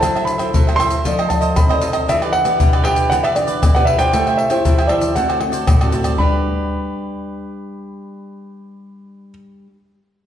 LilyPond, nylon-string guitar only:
\new Staff \with { instrumentName = "Nylon-string guitar" } { \time 4/4 \key g \major \tempo 4 = 117 << { <e' a' c''>8. <e' a' c''>8. <e' a' c''>16 r16 <ees' a' d''>16 r16 <ees' a' d''>8. <ees' a' d''>8. | <d' g' b'>8. <d' g' b'>8. <d' g' b'>8. r16 <d' g' b'>8 r16 <d' g' b'>8 <e' g' c''>16~ | <e' g' c''>8. <e' g' c''>8. <e' g' c''>8 <a c' fis'>8 <a c' fis'>8 r16 <a c' fis'>8. | <g d' b'>1~ |
<g d' b'>1 | } \\ { fis4 fis4 f4 c4 | e4 b,4 e4 b,4 | a4 e4 d4 a,4 | r1 |
r1 | } >> }